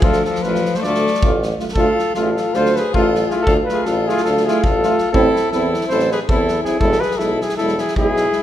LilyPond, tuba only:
\new Staff \with { instrumentName = "Tuba" } { \clef bass \time 9/8 \tempo 4. = 107 d,4 a,,4 d,4 a,,4. | d,8 r8 a,,4 d,4 a,,4. | d,8 r8 a,,4 d,4 a,,4. | a,,8 r8 e,4 a,,4 e,4. |
e,,8 r8 b,,4 e,,4 b,,4. | }